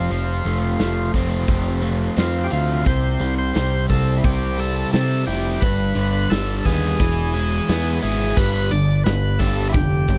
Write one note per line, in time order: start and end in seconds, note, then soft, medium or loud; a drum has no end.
0.00 0.10 F3 medium
0.00 1.15 C4 medium
0.00 1.12 F4 medium
0.10 0.41 F1 medium
0.10 1.48 F3 medium
0.10 open hi-hat medium
0.45 0.75 F1 medium
0.45 0.80 A3 medium
0.45 open hi-hat soft
0.79 1.10 F1 medium
0.79 2.52 F3 medium
0.79 1.81 A3 medium
0.79 snare loud
0.79 open hi-hat medium
1.14 1.44 F1 medium
1.14 2.51 A3 medium
1.14 2.15 C4 medium
1.14 kick medium
1.14 open hi-hat soft
1.48 2.08 F1 medium
1.48 2.84 F3 medium
1.48 2.16 C4 medium
1.48 kick loud
1.48 open hi-hat medium
1.82 2.86 A3 medium
1.82 2.87 F4 medium
1.82 open hi-hat soft
2.16 2.47 F2 medium
2.16 2.86 C4 medium
2.16 2.47 F4 medium
2.16 snare loud
2.16 open hi-hat medium
2.44 2.52 G4 medium
2.51 2.82 D2 medium
2.51 2.87 A3 medium
2.51 2.86 F4 medium
2.51 2.85 F4 medium
2.51 open hi-hat soft
2.85 3.16 C2 medium
2.85 4.23 C3 medium
2.85 3.35 C5 medium
2.85 kick loud
2.85 open hi-hat medium
3.20 3.50 C2 medium
3.20 3.53 G3 medium
3.20 open hi-hat soft
3.38 3.86 C5 loud
3.54 3.85 C2 medium
3.54 5.28 C3 medium
3.54 4.57 G3 medium
3.54 snare loud
3.54 open hi-hat medium
3.89 4.20 C2 medium
3.89 5.27 G3 medium
3.89 4.93 C4 medium
3.89 4.18 A4 medium
3.89 kick medium
3.89 open hi-hat soft
4.17 4.24 E4 medium
4.24 4.84 C2 medium
4.24 5.62 C3 medium
4.24 4.91 C4 medium
4.24 4.60 G4 medium
4.24 kick loud
4.24 open hi-hat medium
4.58 5.62 G3 medium
4.58 5.61 E4 medium
4.58 4.91 A4 medium
4.58 open hi-hat soft
4.93 5.23 C3 medium
4.93 5.62 C4 medium
4.93 5.25 A4 loud
4.93 snare loud
4.93 open hi-hat medium
5.27 5.57 F1 medium
5.27 5.62 G3 medium
5.27 5.62 E4 medium
5.27 5.63 G4 medium
5.27 open hi-hat soft
5.61 5.92 G1 medium
5.61 6.99 G2 medium
5.61 6.32 B4 medium
5.61 kick loud
5.61 open hi-hat medium
5.95 6.26 G1 medium
5.95 6.99 D3 medium
5.95 open hi-hat soft
6.30 6.61 G1 medium
6.30 7.00 D3 medium
6.30 7.00 G3 medium
6.30 6.66 A4 medium
6.30 snare loud
6.30 open hi-hat medium
6.65 6.95 D#2 medium
6.65 7.00 G3 medium
6.65 7.00 B3 medium
6.65 7.99 G#4 medium
6.65 kick medium
6.65 open hi-hat soft
7.00 7.59 E1 medium
7.00 8.37 E3 medium
7.00 kick loud
7.00 open hi-hat medium
7.34 8.37 G#3 medium
7.34 8.38 E4 medium
7.34 open hi-hat soft
7.68 7.99 E2 loud
7.68 8.37 B3 medium
7.68 snare loud
7.68 open hi-hat medium
8.02 8.33 G#1 medium
8.02 8.37 G#3 medium
8.02 8.37 E4 medium
8.02 8.38 G#4 medium
8.02 open hi-hat soft
8.21 snare soft
8.37 8.68 G1 medium
8.37 8.69 G2 medium
8.37 8.70 D3 medium
8.37 8.70 G3 medium
8.37 8.72 B4 medium
8.37 kick loud
8.37 crash loud
8.71 9.03 G1 medium
8.71 9.02 G2 medium
8.71 9.02 D3 medium
8.71 9.03 D5 medium
8.71 ride medium
9.04 9.37 G1 medium
9.04 9.37 G2 medium
9.04 9.37 D3 medium
9.04 9.40 B4 medium
9.04 snare loud
9.04 ride medium
9.39 9.71 G1 medium
9.39 9.72 G2 medium
9.39 9.73 D3 medium
9.39 9.72 G3 medium
9.39 9.68 A4 medium
9.39 kick medium
9.39 ride medium
9.69 9.75 E4 medium
9.69 10.18 G4 medium
9.74 10.06 F1 medium
9.74 10.06 G2 medium
9.74 10.06 D3 medium
9.74 kick loud
9.74 ride loud
10.08 10.18 G1 medium
10.08 10.18 G2 medium
10.08 10.18 D3 medium
10.08 kick medium
10.08 ride medium